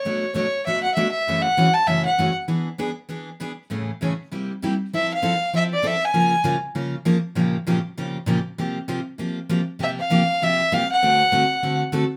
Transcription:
Already playing: violin C#5
0.05 steel-string acoustic guitar B2 F#3 A3 D4 F#4
0.34 steel-string acoustic guitar B2 F#3 A3 D4 F#4, violin C#5
0.66 steel-string acoustic guitar B2 F#3 A3 D4 F#4, violin E5
0.83 violin F#5
0.94 steel-string acoustic guitar B2 F#3 A3 D4 F#4, violin E5
1.11 violin E5
1.27 steel-string acoustic guitar F#2 C#3 E3 A3 C#4 F#4
1.42 violin F#5
1.57 steel-string acoustic guitar F#2 C#3 E3 A3 C#4 F#4
1.73 violin A5
1.87 steel-string acoustic guitar F#2 C#3 E3 A3 C#4 F#4, violin E5
2.05 violin F#5
2.18 steel-string acoustic guitar F#2 C#3 E3 A3 C#4 F#4
2.48 steel-string acoustic guitar E3 B3 D4 G#4
2.78 steel-string acoustic guitar E3 B3 D4 G#4
3.09 steel-string acoustic guitar E3 B3 D4 G#4
3.40 steel-string acoustic guitar E3 B3 D4 G#4
3.70 steel-string acoustic guitar A2 C#3 E3 A3 C#4 G#4
4.01 steel-string acoustic guitar A2 C#3 E3 A3 C#4 G#4
4.31 steel-string acoustic guitar C3 G3 A#3 E4 G4
4.62 steel-string acoustic guitar C3 G3 A#3 E4 G4
4.93 steel-string acoustic guitar F3 C4 E4 A4, violin E5
5.14 violin F5
5.22 steel-string acoustic guitar F3 C4 E4 A4
5.53 steel-string acoustic guitar F3 C4 E4 A4, violin E5
5.73 violin D5
5.82 steel-string acoustic guitar F3 C4 E4 A4
5.87 violin E5
6.05 violin G#5
6.14 steel-string acoustic guitar C#3 F3 A#3 F4 A#4
6.44 steel-string acoustic guitar C#3 F3 A#3 F4 A#4
6.75 steel-string acoustic guitar C#3 F3 A#3 F4 A#4
7.05 steel-string acoustic guitar C#3 F3 A#3 F4 A#4
7.35 steel-string acoustic guitar A#2 C#3 F3 A#3 F4 G4
7.67 steel-string acoustic guitar A#2 C#3 F3 A#3 F4 G4
7.97 steel-string acoustic guitar A#2 C#3 F3 A#3 F4 G4
8.26 steel-string acoustic guitar A#2 C#3 F3 A#3 F4 G4
8.58 steel-string acoustic guitar C3 F3 A#3 F4 G4
8.88 steel-string acoustic guitar C3 F3 A#3 F4 G4
9.18 steel-string acoustic guitar C3 F3 A#3 F4 G4
9.49 steel-string acoustic guitar C3 F3 A#3 F4 G4
9.79 steel-string acoustic guitar C3 F3 A#3 F4 G4, violin E5
9.99 violin F5
10.10 steel-string acoustic guitar C3 F3 A#3 F4 G4
10.42 steel-string acoustic guitar C3 F3 A#3 F4 G4, violin E5
10.72 steel-string acoustic guitar C3 F3 A#3 F4 G4, violin F5
10.91 violin F#5
11.02 steel-string acoustic guitar D3 A3 C4 F#4 A4
11.32 steel-string acoustic guitar D3 A3 C4 F#4 A4
11.63 steel-string acoustic guitar D3 A3 C4 F#4 A4
11.92 steel-string acoustic guitar D3 A3 C4 F#4 A4

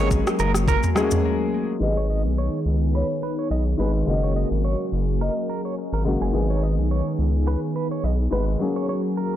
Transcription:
Already playing: grand piano F#3 G#3 A#3 C#4 G#4, analog synth pad F#3 A#3 G#4, marimba A#4
0.00 analog synth bass G#1
0.11 kick, shaker
0.27 cross-stick, shaker
0.39 analog synth bass F#1, clean electric guitar A#4, shaker
0.54 cross-stick, shaker
0.68 clean electric guitar A#4, kick, shaker
0.83 mid tom, shaker
0.95 grand piano F#3 G#3 A3 C#4 G#4, cross-stick, shaker
1.03 grand piano A#3
1.11 mid tom, shaker
1.80 analog synth bass G#1, grand piano D#3 G#3 B3 G4, analog synth pad D#3 B3 G#4, marimba D#5
1.89 grand piano G#4
1.97 clean electric guitar C#5
2.10 clean electric guitar D#5
2.25 analog synth bass B1
2.38 clean electric guitar C#5
2.66 analog synth bass C#2
2.95 clean electric guitar B4, marimba C#5
3.23 clean electric guitar B4
3.39 clean electric guitar C#5
3.51 analog synth bass B1, clean electric guitar D#5
3.78 analog synth bass G#1, grand piano D#3 G#3 B3 G#4, clean electric guitar B4
4.06 analog synth bass F#1, grand piano C#3 G#3 A#3 F#4, analog synth pad F#3 A#3, marimba D#5
4.24 clean electric guitar C#5
4.36 clean electric guitar D#5
4.51 analog synth bass G#1
4.65 clean electric guitar C#5
4.92 analog synth bass F#1
5.21 clean electric guitar A#4, marimba D#5
5.50 clean electric guitar A#4
5.65 clean electric guitar C#5
5.93 analog synth bass G#1, clean electric guitar A#4
6.04 grand piano C#3 G#3 A#3 F#4
6.21 analog synth bass F#1, clean electric guitar G#4
6.33 analog synth bass G#1, grand piano D#3 G#3 B3 G#4, analog synth pad D#3 B3
6.50 clean electric guitar C#5
6.63 clean electric guitar D#5
6.78 analog synth bass B1
6.91 clean electric guitar C#5
7.19 analog synth bass C#2
7.48 clean electric guitar B4
7.76 clean electric guitar B4
7.91 clean electric guitar C#5
8.04 analog synth bass B1, clean electric guitar D#5
8.31 analog synth bass G#1, grand piano D#3 G#3 B3 B4, clean electric guitar B4
8.59 grand piano F#3 A#3 C#4 G#4, analog synth pad F#3 A#3 G#4
8.76 clean electric guitar C#5
8.89 clean electric guitar C#5
9.17 clean electric guitar A#4

